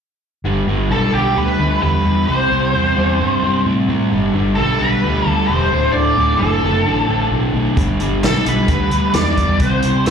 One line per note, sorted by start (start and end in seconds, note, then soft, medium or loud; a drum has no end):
0.44 0.66 G1 medium
0.44 0.66 G2 medium
0.44 0.66 D3 medium
0.44 0.68 G3 loud
0.67 0.89 G1 medium
0.67 0.89 G2 medium
0.67 0.89 D3 medium
0.67 0.90 G3 medium
0.89 1.12 B1 medium
0.89 1.12 G2 medium
0.89 1.12 D3 medium
0.89 1.13 G3 medium
0.89 1.12 A4 medium
1.12 1.34 B1 medium
1.12 1.34 G2 medium
1.12 1.34 D3 medium
1.12 1.35 G3 medium
1.12 1.37 G4 medium
1.35 1.58 D2 medium
1.35 1.57 G2 medium
1.35 1.58 D3 medium
1.35 1.59 G3 medium
1.35 1.81 B4 medium
1.58 1.81 D2 medium
1.58 1.81 G2 medium
1.58 1.81 D3 medium
1.58 1.82 G3 medium
1.82 2.04 E2 medium
1.82 2.04 G2 medium
1.82 2.05 D3 medium
1.82 2.05 G3 medium
1.82 2.27 B4 medium
2.05 2.27 E2 medium
2.05 2.26 G2 medium
2.05 2.27 D3 medium
2.05 2.28 G3 medium
2.27 2.50 C2 medium
2.27 2.49 C3 medium
2.27 2.51 G3 medium
2.27 2.49 C4 loud
2.27 3.61 C5 medium
2.50 2.72 C2 medium
2.50 2.71 C3 medium
2.50 2.73 G3 medium
2.50 2.73 C4 medium
2.72 2.96 E2 medium
2.72 2.95 C3 medium
2.72 2.95 G3 medium
2.72 2.96 C4 medium
2.96 3.19 E2 medium
2.96 3.19 C3 medium
2.96 3.19 G3 medium
2.96 3.20 C4 medium
3.20 3.42 G2 medium
3.20 3.42 C3 medium
3.20 3.42 G3 medium
3.20 3.43 C4 medium
3.43 3.64 G2 medium
3.43 3.64 C3 medium
3.43 3.65 G3 medium
3.43 3.65 C4 medium
3.65 3.88 A2 medium
3.65 3.88 C3 medium
3.65 3.88 G3 medium
3.65 3.89 C4 medium
3.89 4.10 A2 medium
3.89 4.10 C3 medium
3.89 4.10 G3 medium
3.89 4.11 C4 medium
4.11 4.33 G1 medium
4.11 4.33 G2 medium
4.11 4.33 D3 loud
4.11 4.34 G3 medium
4.34 4.56 G1 medium
4.34 4.56 G2 medium
4.34 4.57 D3 medium
4.34 4.57 G3 medium
4.55 4.79 B1 medium
4.55 4.80 G2 medium
4.55 4.80 D3 medium
4.55 4.81 G3 medium
4.55 4.80 A4 medium
4.79 5.02 B1 medium
4.79 5.03 G2 medium
4.79 5.04 D3 medium
4.79 5.04 G3 medium
4.79 5.28 B4 medium
5.04 5.25 D2 medium
5.04 5.25 G2 medium
5.04 5.26 D3 medium
5.04 5.26 G3 medium
5.26 5.48 D2 medium
5.26 5.47 G2 medium
5.26 5.48 D3 medium
5.26 5.49 G3 medium
5.26 5.44 A4 medium
5.47 5.71 E1 medium
5.47 5.70 G2 medium
5.47 5.70 D3 medium
5.47 5.71 G3 medium
5.47 5.91 C5 medium
5.71 5.94 D1 medium
5.71 5.92 D2 medium
5.71 5.93 A2 loud
5.71 5.93 D3 loud
5.93 6.17 D1 medium
5.93 6.16 D2 medium
5.93 6.17 A2 medium
5.93 6.17 D3 loud
5.93 6.41 D5 loud
6.17 6.39 D1 medium
6.17 6.40 D2 medium
6.17 6.40 A2 medium
6.17 6.41 D3 medium
6.38 6.62 F#1 medium
6.38 6.61 D2 medium
6.38 6.62 A2 medium
6.38 7.27 A4 medium
6.42 6.63 D3 medium
6.63 6.85 F#1 medium
6.63 6.84 D2 medium
6.63 6.85 A2 medium
6.63 6.85 D3 medium
6.85 7.08 A1 medium
6.85 7.07 D2 medium
6.85 7.08 A2 medium
6.85 7.08 D3 medium
7.08 7.31 A1 medium
7.08 7.30 D2 medium
7.08 7.30 A2 medium
7.08 7.31 D3 medium
7.31 7.53 B1 medium
7.31 7.54 D2 medium
7.31 7.54 A2 medium
7.31 7.54 D3 medium
7.54 7.76 B1 medium
7.54 7.76 D2 medium
7.54 7.76 A2 medium
7.54 7.76 D3 medium
7.77 7.99 G1 medium
7.77 7.99 G2 medium
7.77 8.00 D3 loud
7.77 8.01 G3 medium
7.77 kick loud
7.77 closed hi-hat medium
8.00 8.22 G1 medium
8.00 8.22 G2 medium
8.00 8.23 D3 medium
8.00 8.24 G3 medium
8.00 closed hi-hat soft
8.23 8.45 B1 medium
8.23 8.43 G2 medium
8.23 8.44 D3 medium
8.23 8.45 G3 medium
8.23 8.45 A4 medium
8.23 snare loud
8.23 closed hi-hat medium
8.45 8.68 B1 medium
8.45 8.67 G2 medium
8.45 8.68 D3 medium
8.45 8.69 G3 loud
8.45 9.13 B4 medium
8.45 closed hi-hat medium
8.68 8.90 D2 medium
8.68 8.90 G2 medium
8.68 8.90 D3 medium
8.68 8.92 G3 medium
8.68 kick loud
8.68 closed hi-hat medium
8.91 9.13 D2 medium
8.91 9.13 G2 medium
8.91 9.13 D3 medium
8.91 9.15 G3 medium
8.91 closed hi-hat medium
9.14 9.36 E2 medium
9.14 9.37 G2 medium
9.14 9.37 D3 medium
9.14 9.38 G3 medium
9.14 9.61 D5 medium
9.14 snare medium
9.14 closed hi-hat medium
9.37 9.60 E2 medium
9.37 9.60 G2 medium
9.37 9.60 D3 medium
9.37 9.61 G3 medium
9.37 kick medium
9.37 closed hi-hat medium
9.60 9.83 C2 medium
9.60 9.83 C3 medium
9.60 9.84 G3 loud
9.60 9.84 C4 medium
9.60 10.06 C5 medium
9.60 kick medium
9.60 closed hi-hat medium
9.82 10.06 C2 medium
9.82 10.06 C3 medium
9.82 10.07 G3 medium
9.82 10.07 C4 medium
9.82 closed hi-hat medium
10.06 10.10 E2 medium
10.06 10.10 C3 medium
10.06 10.10 E5 medium
10.06 snare loud
10.06 closed hi-hat medium